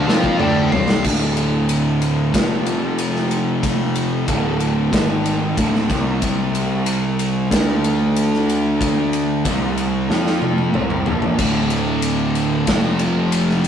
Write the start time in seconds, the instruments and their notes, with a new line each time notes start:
0.06 picked electric bass F2, distorted electric guitar F3 C4 F4, lead electric guitar F5 A5, snare
0.24 kick
0.39 picked electric bass D2, distorted electric guitar D3 A3 D4, lead electric guitar D5 G5, mid tom
0.72 picked electric bass C2, distorted electric guitar C3 G3 C4, lead electric guitar F5, floor tom
0.90 snare
1.04 picked electric bass D1, distorted electric guitar D2 A2 D3, kick, crash
1.37 ride
1.69 ride
2.02 ride
2.34 picked electric bass F1, distorted electric guitar F2 C3 F3, kick, snare, ride
2.66 ride
2.98 ride
3.16 snare
3.31 ride
3.63 kick, ride
3.95 ride
4.27 picked electric bass D1, distorted electric guitar D2 A2 D3, kick, ride
4.60 ride
4.92 picked electric bass G#1, distorted electric guitar G#2 D#3 G#3, kick, snare, ride
5.26 ride
5.57 picked electric bass D1, distorted electric guitar D2 A2 D3, kick, ride
5.75 snare
5.89 picked electric bass C2, distorted electric guitar C3 G3 C4, kick, ride
6.22 picked electric bass C2, distorted electric guitar C3 G3 C4, kick, ride
6.55 ride
6.86 ride
7.19 ride
7.51 picked electric bass D2, distorted electric guitar D3 A3 D4, kick, snare, ride
7.84 ride
8.16 ride
8.34 snare
8.49 ride
8.81 kick, ride
9.13 ride
9.45 picked electric bass C2, distorted electric guitar C3 G3 C4, kick, ride
9.78 ride
10.10 picked electric bass F2, distorted electric guitar F3 C4 F4, snare
10.27 snare
10.42 high tom
10.58 high tom
10.74 picked electric bass C2, distorted electric guitar C3 G3 C4, mid tom
10.90 mid tom
11.06 picked electric bass A#1, distorted electric guitar A#2 F3 A#3, floor tom
11.22 floor tom
11.39 picked electric bass D1, distorted electric guitar D2 A2 D3, kick, crash, ride
11.70 ride
12.02 ride
12.35 ride
12.67 picked electric bass F1, distorted electric guitar F2 C3 F3, kick, snare, ride
12.99 ride
13.32 ride
13.50 snare
13.64 ride